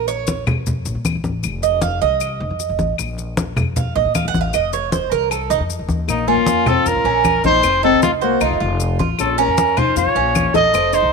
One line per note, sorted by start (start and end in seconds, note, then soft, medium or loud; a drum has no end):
0.00 0.44 A#1 loud
0.08 0.44 C#5 medium
0.08 high conga soft
0.08 maracas medium
0.27 high conga medium
0.27 maracas medium
0.46 0.83 F2 medium
0.46 low conga medium
0.46 claves medium
0.46 maracas soft
0.66 high conga soft
0.66 low conga medium
0.66 maracas medium
0.85 0.94 A#1 loud
0.85 high conga soft
0.85 maracas medium
0.95 1.13 A#2 medium
1.05 high conga medium
1.05 claves medium
1.05 maracas medium
1.15 1.24 A#1 medium
1.24 1.43 A1 medium
1.24 high conga medium
1.24 maracas soft
1.43 1.99 F1 medium
1.43 high conga soft
1.43 claves medium
1.43 maracas medium
1.62 1.81 D#5 medium
1.62 high conga soft
1.62 maracas medium
1.82 2.01 F5 medium
1.82 high conga medium
1.82 maracas medium
2.01 2.39 C2 medium
2.01 2.95 D#5 loud
2.01 high conga soft
2.01 maracas soft
2.20 high conga soft
2.20 claves medium
2.20 maracas medium
2.40 2.50 F1 loud
2.40 high conga soft
2.50 2.69 F2 medium
2.60 high conga soft
2.60 maracas medium
2.69 2.78 F1 medium
2.79 2.97 A1 medium
2.79 high conga medium
2.79 maracas soft
2.98 3.54 A#1 loud
2.98 high conga soft
2.98 claves medium
2.98 maracas medium
3.18 high conga soft
3.18 maracas medium
3.37 high conga loud
3.37 maracas medium
3.57 3.94 F2 medium
3.57 low conga medium
3.57 claves medium
3.57 maracas soft
3.76 3.95 F5 medium
3.76 high conga soft
3.76 low conga medium
3.76 maracas medium
3.96 4.05 A#1 loud
3.96 4.14 D#5 medium
3.96 high conga soft
4.05 4.24 A#2 medium
4.15 4.27 F5 medium
4.15 high conga medium
4.15 claves medium
4.15 maracas medium
4.25 4.33 A#1 medium
4.25 4.40 F#5 loud
4.34 4.53 A1 medium
4.34 high conga medium
4.34 maracas soft
4.41 4.53 F5 medium
4.53 5.09 F1 medium
4.53 4.73 D#5 medium
4.53 high conga soft
4.53 claves medium
4.53 maracas medium
4.73 4.92 C#5 medium
4.73 high conga soft
4.73 maracas medium
4.92 5.11 C5 medium
4.92 high conga medium
4.92 maracas medium
5.12 5.49 C2 medium
5.12 5.30 A#4 loud
5.12 high conga soft
5.12 maracas soft
5.31 5.50 A4 medium
5.31 high conga soft
5.31 claves medium
5.31 maracas medium
5.50 5.60 F1 loud
5.50 5.62 D#4 medium
5.50 high conga soft
5.50 maracas medium
5.60 5.79 F2 medium
5.69 high conga soft
5.69 maracas medium
5.79 5.88 F1 medium
5.88 6.07 D#2 medium
5.88 high conga medium
5.88 maracas soft
6.08 6.36 A#1 loud
6.08 6.27 A#3 medium
6.08 6.29 D#4 medium
6.08 high conga soft
6.08 claves medium
6.08 maracas medium
6.27 6.68 A#3 medium
6.27 6.66 C#4 medium
6.27 6.69 F4 loud
6.27 high conga soft
6.37 6.83 F2 medium
6.46 high conga loud
6.46 maracas medium
6.66 6.88 C4 medium
6.66 7.04 F4 medium
6.66 6.89 A4 medium
6.66 low conga medium
6.66 claves medium
6.66 maracas soft
6.86 6.94 F2 medium
6.86 7.45 C#4 medium
6.86 7.45 A#4 loud
6.86 high conga soft
6.86 maracas medium
6.95 7.04 A#1 medium
7.04 7.42 A#1 loud
7.04 7.43 C#4 medium
7.04 high conga soft
7.25 high conga medium
7.25 claves medium
7.25 maracas medium
7.44 7.63 A#1 medium
7.44 7.63 D#4 medium
7.44 7.81 D#4 loud
7.44 7.81 C5 loud
7.44 high conga medium
7.44 maracas soft
7.63 7.91 F1 loud
7.63 7.82 C4 medium
7.63 high conga soft
7.63 claves medium
7.63 maracas medium
7.83 8.02 C4 medium
7.83 8.21 D#4 medium
7.83 8.02 A4 loud
7.83 high conga soft
7.92 8.39 C2 medium
8.02 8.09 A3 medium
8.02 8.11 F4 medium
8.02 high conga loud
8.02 maracas medium
8.21 8.42 A#3 medium
8.21 8.44 F#4 medium
8.21 8.41 C5 medium
8.21 high conga soft
8.21 maracas soft
8.41 8.50 C2 medium
8.41 8.81 A3 medium
8.41 8.60 D#4 medium
8.41 8.81 F4 medium
8.41 high conga soft
8.41 claves medium
8.41 maracas medium
8.51 8.60 F1 medium
8.60 8.98 F1 loud
8.60 8.98 F4 medium
8.60 high conga soft
8.80 high conga soft
8.80 maracas medium
8.99 9.18 A1 medium
8.99 9.37 F4 medium
8.99 high conga medium
8.99 maracas soft
9.19 9.46 A#1 loud
9.19 9.38 C#4 medium
9.19 9.40 A4 medium
9.19 high conga soft
9.19 claves medium
9.19 maracas medium
9.38 9.76 C#4 loud
9.38 9.78 C#4 medium
9.38 9.79 A#4 loud
9.38 high conga soft
9.38 maracas medium
9.48 9.94 F2 medium
9.57 high conga medium
9.57 maracas medium
9.77 9.97 D#4 medium
9.77 10.15 F4 medium
9.77 9.97 C5 medium
9.77 low conga medium
9.77 claves medium
9.77 maracas soft
9.96 10.05 F2 medium
9.96 10.51 F4 medium
9.96 10.51 C#5 medium
9.96 high conga soft
9.96 maracas medium
10.06 10.15 A#1 medium
10.15 10.52 A#1 loud
10.15 10.53 C#4 medium
10.15 high conga soft
10.35 high conga medium
10.35 claves medium
10.35 maracas medium
10.54 10.73 A#1 medium
10.54 10.74 D#4 medium
10.54 10.91 A4 loud
10.54 10.96 D#5 loud
10.54 high conga medium
10.54 maracas soft
10.74 11.02 F1 loud
10.74 10.93 C4 medium
10.74 high conga soft
10.74 claves medium
10.74 maracas medium
10.93 11.13 D#4 medium
10.93 11.13 C5 loud
10.93 high conga soft
10.93 maracas medium
11.03 11.13 C2 medium